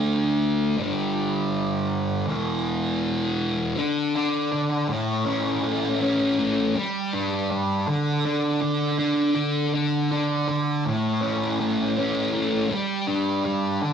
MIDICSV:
0, 0, Header, 1, 2, 480
1, 0, Start_track
1, 0, Tempo, 746269
1, 498, Time_signature, 4, 2, 24, 8
1, 8961, End_track
2, 0, Start_track
2, 0, Title_t, "Distorted electric guitar"
2, 0, Program_c, 0, 30
2, 0, Note_on_c, 0, 50, 82
2, 0, Note_on_c, 0, 57, 82
2, 0, Note_on_c, 0, 62, 92
2, 483, Note_off_c, 0, 50, 0
2, 489, Note_off_c, 0, 57, 0
2, 494, Note_off_c, 0, 62, 0
2, 498, Note_on_c, 0, 43, 87
2, 512, Note_on_c, 0, 50, 85
2, 521, Note_on_c, 0, 55, 86
2, 1448, Note_off_c, 0, 43, 0
2, 1455, Note_off_c, 0, 50, 0
2, 1458, Note_on_c, 0, 40, 81
2, 1459, Note_off_c, 0, 55, 0
2, 1472, Note_on_c, 0, 47, 87
2, 1480, Note_on_c, 0, 52, 92
2, 2409, Note_off_c, 0, 40, 0
2, 2415, Note_off_c, 0, 47, 0
2, 2419, Note_off_c, 0, 52, 0
2, 2429, Note_on_c, 0, 50, 72
2, 2672, Note_on_c, 0, 62, 74
2, 2900, Note_off_c, 0, 50, 0
2, 2907, Note_on_c, 0, 50, 68
2, 3138, Note_on_c, 0, 45, 71
2, 3147, Note_off_c, 0, 50, 0
2, 3149, Note_off_c, 0, 62, 0
2, 3379, Note_on_c, 0, 61, 68
2, 3619, Note_on_c, 0, 57, 67
2, 3858, Note_off_c, 0, 61, 0
2, 3866, Note_on_c, 0, 61, 70
2, 4103, Note_off_c, 0, 57, 0
2, 4105, Note_on_c, 0, 57, 63
2, 4342, Note_off_c, 0, 45, 0
2, 4343, Note_off_c, 0, 57, 0
2, 4346, Note_off_c, 0, 61, 0
2, 4346, Note_on_c, 0, 55, 77
2, 4587, Note_on_c, 0, 62, 71
2, 4821, Note_off_c, 0, 55, 0
2, 4828, Note_on_c, 0, 55, 75
2, 5064, Note_off_c, 0, 55, 0
2, 5066, Note_off_c, 0, 62, 0
2, 5066, Note_on_c, 0, 50, 71
2, 5307, Note_on_c, 0, 62, 70
2, 5532, Note_off_c, 0, 50, 0
2, 5540, Note_on_c, 0, 50, 70
2, 5773, Note_off_c, 0, 62, 0
2, 5781, Note_on_c, 0, 62, 64
2, 6009, Note_off_c, 0, 50, 0
2, 6017, Note_on_c, 0, 50, 69
2, 6256, Note_off_c, 0, 50, 0
2, 6261, Note_off_c, 0, 62, 0
2, 6264, Note_on_c, 0, 50, 79
2, 6504, Note_on_c, 0, 62, 74
2, 6735, Note_off_c, 0, 50, 0
2, 6742, Note_on_c, 0, 50, 74
2, 6980, Note_on_c, 0, 45, 66
2, 6981, Note_off_c, 0, 50, 0
2, 6982, Note_off_c, 0, 62, 0
2, 7215, Note_on_c, 0, 61, 66
2, 7456, Note_on_c, 0, 57, 77
2, 7691, Note_off_c, 0, 61, 0
2, 7699, Note_on_c, 0, 61, 69
2, 7933, Note_off_c, 0, 57, 0
2, 7935, Note_on_c, 0, 57, 67
2, 8168, Note_off_c, 0, 57, 0
2, 8170, Note_on_c, 0, 55, 73
2, 8175, Note_off_c, 0, 45, 0
2, 8176, Note_off_c, 0, 61, 0
2, 8409, Note_on_c, 0, 62, 71
2, 8643, Note_off_c, 0, 55, 0
2, 8651, Note_on_c, 0, 55, 75
2, 8888, Note_off_c, 0, 55, 0
2, 8889, Note_off_c, 0, 62, 0
2, 8890, Note_on_c, 0, 50, 66
2, 8961, Note_off_c, 0, 50, 0
2, 8961, End_track
0, 0, End_of_file